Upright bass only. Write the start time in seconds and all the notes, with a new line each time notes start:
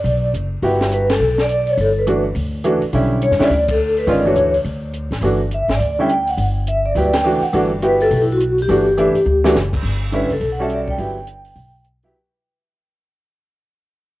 0.04 B1
0.34 F#1
0.62 G1
1.20 B1
1.77 G1
2.35 D2
2.82 muted upright bass stroke
2.93 B1
3.31 F#2
3.40 D2
3.50 D2
4.07 G1
4.36 D2
4.64 D2
5.11 A1
5.21 G1
5.68 G#1
5.79 D2
6.37 G1
6.95 D2
7.42 muted upright bass stroke
7.53 G1
8.11 B1
8.68 G1
9.15 muted upright bass stroke
9.26 D2
9.55 F#1
9.83 G1
10.30 F#1
10.41 B1
10.98 G1
11.56 B1